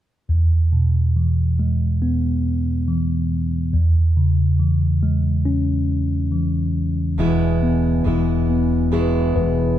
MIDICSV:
0, 0, Header, 1, 4, 480
1, 0, Start_track
1, 0, Tempo, 863309
1, 161, Time_signature, 4, 2, 24, 8
1, 5442, End_track
2, 0, Start_track
2, 0, Title_t, "Steel-string acoustic guitar"
2, 0, Program_c, 0, 25
2, 3991, Note_on_c, 0, 40, 63
2, 3995, Note_on_c, 0, 47, 60
2, 3997, Note_on_c, 0, 52, 60
2, 4000, Note_on_c, 0, 56, 67
2, 4002, Note_on_c, 0, 59, 77
2, 4003, Note_on_c, 0, 64, 71
2, 4469, Note_off_c, 0, 52, 0
2, 4472, Note_on_c, 0, 52, 54
2, 4477, Note_off_c, 0, 40, 0
2, 4477, Note_off_c, 0, 56, 0
2, 4477, Note_off_c, 0, 59, 0
2, 4478, Note_off_c, 0, 47, 0
2, 4479, Note_on_c, 0, 56, 51
2, 4483, Note_on_c, 0, 59, 53
2, 4486, Note_off_c, 0, 64, 0
2, 4489, Note_on_c, 0, 64, 57
2, 4957, Note_on_c, 0, 40, 63
2, 4959, Note_on_c, 0, 47, 69
2, 4960, Note_off_c, 0, 52, 0
2, 4960, Note_off_c, 0, 59, 0
2, 4961, Note_off_c, 0, 56, 0
2, 4962, Note_on_c, 0, 52, 68
2, 4964, Note_on_c, 0, 56, 69
2, 4967, Note_off_c, 0, 64, 0
2, 4967, Note_on_c, 0, 59, 68
2, 4969, Note_on_c, 0, 64, 82
2, 5433, Note_off_c, 0, 52, 0
2, 5439, Note_off_c, 0, 59, 0
2, 5440, Note_off_c, 0, 40, 0
2, 5440, Note_off_c, 0, 56, 0
2, 5441, Note_off_c, 0, 47, 0
2, 5442, Note_off_c, 0, 64, 0
2, 5442, End_track
3, 0, Start_track
3, 0, Title_t, "Tine electric piano"
3, 0, Program_c, 1, 4
3, 162, Note_on_c, 1, 40, 44
3, 273, Control_c, 1, 64, 127
3, 404, Note_on_c, 1, 47, 35
3, 648, Note_on_c, 1, 52, 32
3, 887, Note_on_c, 1, 56, 36
3, 1123, Note_on_c, 1, 59, 38
3, 1339, Note_off_c, 1, 47, 0
3, 1578, Note_off_c, 1, 52, 0
3, 1600, Note_on_c, 1, 52, 44
3, 1815, Note_off_c, 1, 56, 0
3, 2052, Note_off_c, 1, 40, 0
3, 2052, Note_off_c, 1, 59, 0
3, 2060, Note_off_c, 1, 52, 0
3, 2076, Note_on_c, 1, 40, 51
3, 2082, Control_c, 1, 64, 0
3, 2191, Control_c, 1, 64, 127
3, 2319, Note_on_c, 1, 49, 40
3, 2556, Note_on_c, 1, 52, 37
3, 2796, Note_on_c, 1, 56, 42
3, 3033, Note_on_c, 1, 61, 45
3, 3250, Note_off_c, 1, 49, 0
3, 3491, Note_off_c, 1, 52, 0
3, 3512, Note_on_c, 1, 52, 40
3, 3734, Note_off_c, 1, 56, 0
3, 3974, Note_off_c, 1, 40, 0
3, 3975, Note_off_c, 1, 61, 0
3, 3982, Note_off_c, 1, 52, 0
3, 4000, Note_on_c, 1, 52, 50
3, 4003, Control_c, 1, 64, 0
3, 4106, Control_c, 1, 64, 127
3, 4241, Note_on_c, 1, 59, 45
3, 4483, Note_on_c, 1, 68, 38
3, 4720, Note_off_c, 1, 59, 0
3, 4727, Note_on_c, 1, 59, 41
3, 4957, Note_off_c, 1, 68, 0
3, 4964, Note_on_c, 1, 68, 43
3, 5203, Note_on_c, 1, 71, 46
3, 5441, Note_off_c, 1, 59, 0
3, 5442, Note_off_c, 1, 52, 0
3, 5442, Note_off_c, 1, 68, 0
3, 5442, Note_off_c, 1, 71, 0
3, 5442, End_track
4, 0, Start_track
4, 0, Title_t, "Fretless electric bass"
4, 0, Program_c, 2, 35
4, 3995, Note_on_c, 2, 28, 78
4, 4457, Note_off_c, 2, 28, 0
4, 4480, Note_on_c, 2, 28, 80
4, 5180, Note_off_c, 2, 28, 0
4, 5202, Note_on_c, 2, 28, 78
4, 5442, Note_off_c, 2, 28, 0
4, 5442, End_track
0, 0, End_of_file